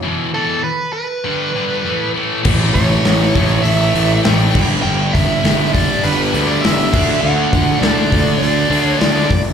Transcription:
0.03 E2 B2 E3
0.34 E2 B2 E3 A4
0.64 B4
0.93 B4
1.24 G2 D3 G3
1.55 G2 D3 G3
1.84 A2 E3 A3
2.14 A2 E3 A3
2.43 A1 A2 E3 A3, kick, crash
2.74 A1 C#5, kick, open hi-hat
3.05 A1, snare, open hi-hat
3.35 A1 A2 E3 A3, kick, open hi-hat
3.62 A1 E5, open hi-hat
3.94 A1 A2 E3 A3, open hi-hat
4.24 A1 A2 E3 A3 G5, snare, open hi-hat
4.53 G1 G2 D3 G3, kick, crash
4.82 G1 G5
5.13 G1 E5, kick, open hi-hat
5.44 G1 G2 D3 G3, snare, open hi-hat
5.73 D5, kick, open hi-hat
6.04 G1 G2 D3 G3 B4, open hi-hat
6.33 D2 G2 D3 G3, open hi-hat
6.47 D5
6.61 G1 E5, snare, open hi-hat
6.92 D2 D3 A3 D4, kick, crash
7.21 D2 F#5
7.53 D2, kick, open hi-hat
7.79 D2 D3 A3 D5, open hi-hat
7.83 D4, snare
8.12 D2, kick, open hi-hat
8.38 D2 D3 A3 D5
8.43 D4, open hi-hat
8.70 D2 D3 A3 D4, open hi-hat
8.83 C#5
8.99 D2 D5, snare, open hi-hat
9.31 F#1, kick, open hi-hat

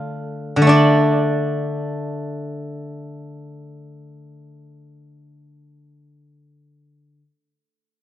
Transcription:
Already playing: D3 A3 D4 F4
0.56 D3
0.62 A3
0.67 D4 D5

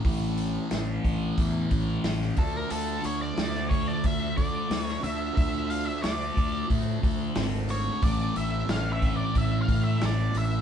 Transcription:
Already playing: E3 D4 E4
0.04 A1 A2 E3 A3 G4, kick, open hi-hat
0.38 open hi-hat
0.71 A1, snare, open hi-hat
1.04 A1, kick, open hi-hat
1.38 E2, kick, open hi-hat
1.71 A1, kick, open hi-hat
2.04 A1, snare, open hi-hat
2.21 snare
2.36 D2 D3 F3 A3 D4 F4 A4, kick, open hi-hat
2.57 A#4
2.70 D2 A4, open hi-hat
3.04 D2 C#5, open hi-hat
3.21 D5
3.38 D2, snare, open hi-hat
3.55 snare
3.70 C#5, kick, open hi-hat
3.87 D5
4.04 D2 E5, kick, open hi-hat
4.37 D3 D5, kick, open hi-hat
4.70 D2, snare, open hi-hat
4.81 C#5
4.88 snare
5.03 D2 D3 A3 D4 E5, open hi-hat
5.36 D2 E5, kick, open hi-hat
5.70 F5, open hi-hat
5.85 E5
6.03 D2 D5, snare, open hi-hat
6.37 D2, kick, open hi-hat
6.70 A2, kick, open hi-hat
7.03 D2, kick, open hi-hat
7.36 G#1, snare, open hi-hat
7.69 C#5, open hi-hat
8.02 A1 A2 E3 A3 E4 D5, kick, open hi-hat
8.36 A1 E5, open hi-hat
8.69 A1 F5, snare, open hi-hat
8.93 E5
9.02 kick, open hi-hat
9.17 D5
9.35 A1 E5, kick, open hi-hat
9.62 F5
9.68 A2, kick, open hi-hat
9.84 E5
10.01 A1, snare, open hi-hat
10.06 D5
10.35 A1 E5, open hi-hat

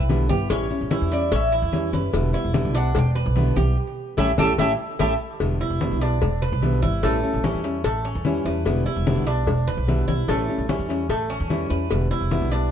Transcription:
Already playing: B4
0.00 B1
0.09 B2 D3 G3 B3 E4, cowbell, high conga, maracas
0.29 G1 G3 B3 E4 G4, high conga, maracas
0.50 A1 E3 G3 C#4 E4, cowbell, high conga, maracas
0.70 G3 C#4 E4, high conga, maracas
0.81 A1
0.91 E3 G3 C#4 E4, cowbell, high conga, maracas
1.01 E2
1.11 G3 C#4 E4 D5, cowbell, high conga, maracas
1.32 A1 C#4 E5, muted nylon-string guitar stroke, cowbell, high conga, maracas
1.52 E4, high conga, maracas
1.62 E2
1.73 E3 G3 C#4 E4, cowbell, high conga, maracas
1.92 F#1 G3 C#4 E4 B4, high conga, maracas
2.13 E1 B2 D3 G3 B3 E4, cowbell, high conga, maracas
2.33 G3 B3 E4, high conga, maracas
2.44 E1
2.53 B2 D3 G3 B3 E4, cowbell, high conga, maracas
2.65 B1
2.74 G3 B3 D4 E4 F#5, cowbell, maracas
2.95 E1, muted nylon-string guitar stroke, cowbell, high conga, low conga, maracas
2.99 G5
3.15 B4, high conga, maracas
3.26 B1
3.35 B2 D3 G3 B3 E4, cowbell, high conga, maracas
3.56 B1 G3 B3 E4 G4, high conga, maracas
4.17 A1 G3 A3 C#4 E4 G4 A4 E5 G5 A5, cowbell, high conga, maracas
4.38 A1 G3 A3 C#4 E4 G4 A4 E5 G5 A5, cowbell, high conga, maracas
4.58 A1 G3 A3 C#4 E4 G4 A4 E5 G5 A5, cowbell, high conga, maracas
4.99 A1 G3 A3 C#4 E4 G4 A4 E5 G5 A5, cowbell, high conga, maracas
5.40 E1 B2 D3 G3 B3 E4, cowbell, high conga
5.60 G3 B3 E4, high conga
5.70 E1
5.81 B2 D3 G3 B3 E4, cowbell, high conga
5.91 B1
6.01 G3 B3 D4 E4, cowbell
6.21 E1, muted nylon-string guitar stroke, cowbell, high conga, low conga
6.42 B4, high conga, low conga
6.52 B1
6.62 B2 D3 G3 B3 E4, cowbell, high conga
6.82 G1 G3 B3 E4, high conga
7.03 A1 E3 G3 A3 C#4 E4, cowbell, high conga
7.23 G3 C#4 E4, high conga
7.34 A1
7.43 E3 G3 C#4 E4, cowbell, high conga
7.54 E2
7.64 G3 C#4 E4, cowbell, high conga
7.84 A1 A3, muted nylon-string guitar stroke, cowbell, high conga
8.05 C#4, high conga
8.15 E2
8.25 E3 G3 C#4 E4, cowbell, high conga
8.45 E2 G3 C#4 E4 B4
8.65 E1 B2 D3 G3 B3 E4, cowbell, high conga
8.86 G3 B3 E4, high conga
8.96 E1
9.06 B2 D3 G3 B3 E4, cowbell, high conga
9.16 B1
9.27 G3 B3 D4 E4, cowbell
9.47 E1, muted nylon-string guitar stroke, cowbell, high conga, low conga
9.67 B4, high conga, low conga
9.77 B1
9.87 B2 D3 G3 B3 E4, cowbell, high conga
10.08 B1 G3 B3 E4, high conga
10.28 A1 E3 G3 A3 C#4 E4, cowbell, high conga
10.48 G3 C#4 E4, high conga
10.58 A1
10.68 E3 G3 C#4 E4, cowbell, high conga
10.79 E2
10.89 G3 C#4 E4, cowbell, high conga
11.09 A1 A3, muted nylon-string guitar stroke, cowbell, high conga
11.30 C#4, high conga
11.40 E2
11.49 E3 G3 C#4 E4, cowbell, high conga
11.70 E2 G3 C#4 E4 B4
11.90 E1 B2 D3 G3 B3 E4, cowbell, high conga, maracas
12.11 G3 B3 E4, high conga, maracas
12.21 E1
12.31 B2 D3 G3 B3 E4, cowbell, high conga, maracas
12.42 B1
12.51 G3 B3 D4 E4, cowbell, maracas

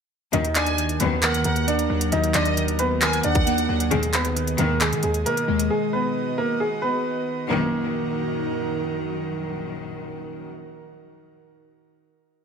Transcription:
0.33 A#1 D#2 F#2 D#3 D#4 F#4 A#4 D#5, closed hi-hat
0.45 closed hi-hat
0.55 D#3 D4 D5 G#5, clap, closed hi-hat
0.66 closed hi-hat
0.78 D#3, closed hi-hat
0.89 closed hi-hat
1.00 A#1 D#2 F#2 D#3 B3 B4, closed hi-hat
1.22 D#3 A#3 A#4 F#5, clap, closed hi-hat
1.34 closed hi-hat
1.44 D#2 D#3 A#3 A#4 F#5, closed hi-hat
1.56 closed hi-hat
1.67 A#3 D4 D5, closed hi-hat
1.79 closed hi-hat
1.90 D#2 F#3
2.01 closed hi-hat
2.12 D#2 D#3 D#4 D#5, closed hi-hat
2.24 closed hi-hat
2.34 D#2 D#3 D4 D5 D#5, clap, closed hi-hat
2.45 closed hi-hat
2.57 D#3, closed hi-hat
2.68 closed hi-hat
2.79 D#3 B3 B4, closed hi-hat
3.01 D#3 A#3 A#4 G#5, clap, closed hi-hat
3.13 closed hi-hat
3.23 D#2 D#3 D4 D5 F#5, closed hi-hat
3.35 kick, closed hi-hat
3.47 A#3, closed hi-hat
3.58 closed hi-hat
3.69 D#2 F#3
3.80 closed hi-hat
3.91 B1 D#2 G#2 D#3 G#3 G#4 D#5, closed hi-hat
4.03 closed hi-hat
4.13 D#3 B3 B4, clap, closed hi-hat
4.25 closed hi-hat
4.36 D#3, closed hi-hat
4.47 closed hi-hat
4.58 B1 D#2 G#2 D#3 A#3 A#4, closed hi-hat
4.81 D#3 G#3 G#4, clap, closed hi-hat
4.92 D#3, closed hi-hat
5.03 D#2 D#3 G#3 G#4, closed hi-hat
5.14 closed hi-hat
5.26 B2 A#3 A#4, closed hi-hat
5.37 closed hi-hat
5.48 D#2 G#3
5.59 closed hi-hat
5.70 G#3 F#4 G#4
5.93 B3 B4
6.38 A#3 A#4
6.60 G#3 G#4
6.82 B3 B4
7.49 A#1 F#2 D#3 A#3 D#4 F#4 A#4

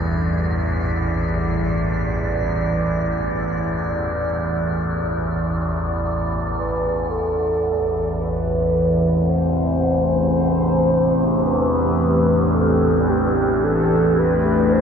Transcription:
Already playing: A1 E2 G2 D5
6.57 B4
7.08 A1 E2 A3 A4
7.62 C4
8.18 D4 B4
8.24 G4
9.29 C5
11.46 B4
12.41 E5
12.55 A4
13.09 G4
13.64 A4
14.19 B4
14.72 C5

